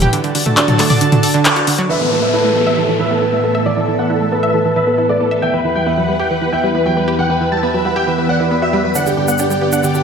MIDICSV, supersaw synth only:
0, 0, Header, 1, 2, 480
1, 0, Start_track
1, 0, Tempo, 441176
1, 140, Time_signature, 4, 2, 24, 8
1, 10915, End_track
2, 0, Start_track
2, 0, Title_t, "Supersaw synth"
2, 0, Program_c, 0, 81
2, 2060, Note_on_c, 0, 76, 99
2, 2140, Note_off_c, 0, 76, 0
2, 2180, Note_on_c, 0, 69, 66
2, 2260, Note_off_c, 0, 69, 0
2, 2300, Note_on_c, 0, 69, 61
2, 2380, Note_off_c, 0, 69, 0
2, 2419, Note_on_c, 0, 76, 95
2, 2499, Note_off_c, 0, 76, 0
2, 2541, Note_on_c, 0, 69, 63
2, 2620, Note_off_c, 0, 69, 0
2, 2660, Note_on_c, 0, 69, 63
2, 2740, Note_off_c, 0, 69, 0
2, 2780, Note_on_c, 0, 69, 65
2, 2859, Note_off_c, 0, 69, 0
2, 2901, Note_on_c, 0, 76, 91
2, 2980, Note_off_c, 0, 76, 0
2, 3021, Note_on_c, 0, 69, 63
2, 3100, Note_off_c, 0, 69, 0
2, 3141, Note_on_c, 0, 69, 62
2, 3220, Note_off_c, 0, 69, 0
2, 3261, Note_on_c, 0, 76, 96
2, 3340, Note_off_c, 0, 76, 0
2, 3381, Note_on_c, 0, 69, 62
2, 3460, Note_off_c, 0, 69, 0
2, 3500, Note_on_c, 0, 69, 62
2, 3580, Note_off_c, 0, 69, 0
2, 3620, Note_on_c, 0, 76, 94
2, 3699, Note_off_c, 0, 76, 0
2, 3739, Note_on_c, 0, 69, 62
2, 3819, Note_off_c, 0, 69, 0
2, 3861, Note_on_c, 0, 69, 60
2, 3940, Note_off_c, 0, 69, 0
2, 3981, Note_on_c, 0, 74, 94
2, 4060, Note_off_c, 0, 74, 0
2, 4100, Note_on_c, 0, 69, 63
2, 4179, Note_off_c, 0, 69, 0
2, 4220, Note_on_c, 0, 69, 64
2, 4299, Note_off_c, 0, 69, 0
2, 4339, Note_on_c, 0, 78, 94
2, 4419, Note_off_c, 0, 78, 0
2, 4460, Note_on_c, 0, 69, 64
2, 4539, Note_off_c, 0, 69, 0
2, 4580, Note_on_c, 0, 69, 62
2, 4659, Note_off_c, 0, 69, 0
2, 4701, Note_on_c, 0, 69, 64
2, 4780, Note_off_c, 0, 69, 0
2, 4821, Note_on_c, 0, 76, 96
2, 4900, Note_off_c, 0, 76, 0
2, 4941, Note_on_c, 0, 69, 61
2, 5020, Note_off_c, 0, 69, 0
2, 5061, Note_on_c, 0, 69, 62
2, 5140, Note_off_c, 0, 69, 0
2, 5181, Note_on_c, 0, 76, 97
2, 5260, Note_off_c, 0, 76, 0
2, 5302, Note_on_c, 0, 69, 63
2, 5380, Note_off_c, 0, 69, 0
2, 5421, Note_on_c, 0, 69, 62
2, 5500, Note_off_c, 0, 69, 0
2, 5540, Note_on_c, 0, 74, 91
2, 5620, Note_off_c, 0, 74, 0
2, 5660, Note_on_c, 0, 69, 63
2, 5740, Note_off_c, 0, 69, 0
2, 5781, Note_on_c, 0, 69, 61
2, 5860, Note_off_c, 0, 69, 0
2, 5900, Note_on_c, 0, 79, 100
2, 5979, Note_off_c, 0, 79, 0
2, 6021, Note_on_c, 0, 71, 64
2, 6100, Note_off_c, 0, 71, 0
2, 6140, Note_on_c, 0, 71, 64
2, 6219, Note_off_c, 0, 71, 0
2, 6260, Note_on_c, 0, 79, 91
2, 6339, Note_off_c, 0, 79, 0
2, 6380, Note_on_c, 0, 71, 63
2, 6459, Note_off_c, 0, 71, 0
2, 6500, Note_on_c, 0, 71, 62
2, 6579, Note_off_c, 0, 71, 0
2, 6620, Note_on_c, 0, 71, 66
2, 6699, Note_off_c, 0, 71, 0
2, 6740, Note_on_c, 0, 79, 90
2, 6819, Note_off_c, 0, 79, 0
2, 6860, Note_on_c, 0, 71, 63
2, 6939, Note_off_c, 0, 71, 0
2, 6979, Note_on_c, 0, 71, 62
2, 7059, Note_off_c, 0, 71, 0
2, 7099, Note_on_c, 0, 79, 93
2, 7179, Note_off_c, 0, 79, 0
2, 7220, Note_on_c, 0, 71, 62
2, 7299, Note_off_c, 0, 71, 0
2, 7339, Note_on_c, 0, 71, 64
2, 7419, Note_off_c, 0, 71, 0
2, 7459, Note_on_c, 0, 79, 91
2, 7539, Note_off_c, 0, 79, 0
2, 7580, Note_on_c, 0, 71, 62
2, 7660, Note_off_c, 0, 71, 0
2, 7700, Note_on_c, 0, 71, 61
2, 7779, Note_off_c, 0, 71, 0
2, 7819, Note_on_c, 0, 78, 94
2, 7899, Note_off_c, 0, 78, 0
2, 7940, Note_on_c, 0, 71, 66
2, 8019, Note_off_c, 0, 71, 0
2, 8059, Note_on_c, 0, 71, 61
2, 8139, Note_off_c, 0, 71, 0
2, 8180, Note_on_c, 0, 81, 92
2, 8259, Note_off_c, 0, 81, 0
2, 8300, Note_on_c, 0, 71, 66
2, 8379, Note_off_c, 0, 71, 0
2, 8419, Note_on_c, 0, 71, 60
2, 8499, Note_off_c, 0, 71, 0
2, 8540, Note_on_c, 0, 71, 64
2, 8620, Note_off_c, 0, 71, 0
2, 8660, Note_on_c, 0, 79, 91
2, 8740, Note_off_c, 0, 79, 0
2, 8781, Note_on_c, 0, 71, 61
2, 8860, Note_off_c, 0, 71, 0
2, 8901, Note_on_c, 0, 71, 63
2, 8980, Note_off_c, 0, 71, 0
2, 9021, Note_on_c, 0, 78, 94
2, 9100, Note_off_c, 0, 78, 0
2, 9141, Note_on_c, 0, 71, 61
2, 9220, Note_off_c, 0, 71, 0
2, 9261, Note_on_c, 0, 71, 61
2, 9340, Note_off_c, 0, 71, 0
2, 9380, Note_on_c, 0, 76, 96
2, 9459, Note_off_c, 0, 76, 0
2, 9501, Note_on_c, 0, 71, 65
2, 9580, Note_off_c, 0, 71, 0
2, 9621, Note_on_c, 0, 71, 63
2, 9700, Note_off_c, 0, 71, 0
2, 9740, Note_on_c, 0, 78, 98
2, 9820, Note_off_c, 0, 78, 0
2, 9860, Note_on_c, 0, 67, 66
2, 9940, Note_off_c, 0, 67, 0
2, 9979, Note_on_c, 0, 67, 63
2, 10059, Note_off_c, 0, 67, 0
2, 10098, Note_on_c, 0, 78, 91
2, 10178, Note_off_c, 0, 78, 0
2, 10219, Note_on_c, 0, 67, 67
2, 10299, Note_off_c, 0, 67, 0
2, 10340, Note_on_c, 0, 67, 64
2, 10419, Note_off_c, 0, 67, 0
2, 10460, Note_on_c, 0, 67, 65
2, 10539, Note_off_c, 0, 67, 0
2, 10581, Note_on_c, 0, 78, 93
2, 10660, Note_off_c, 0, 78, 0
2, 10701, Note_on_c, 0, 67, 60
2, 10780, Note_off_c, 0, 67, 0
2, 10821, Note_on_c, 0, 67, 61
2, 10900, Note_off_c, 0, 67, 0
2, 10915, End_track
0, 0, End_of_file